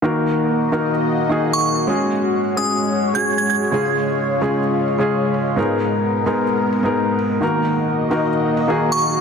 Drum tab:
HH |-----o-o|-o-o-o-o|-o-o-o-o|-o-o-o-o|

HH |-o-o-o-o|